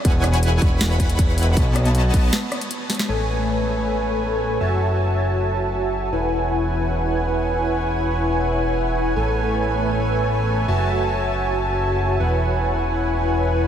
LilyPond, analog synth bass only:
\new Staff \with { instrumentName = "Analog synth bass" } { \clef bass \time 4/4 \key e \major \tempo 4 = 158 e,,4. e,,2~ e,,8 | b,,4. b,,8 r2 | a,,1 | fis,,1 |
e,,1~ | e,,1 | a,,1 | fis,,1 |
e,,1 | }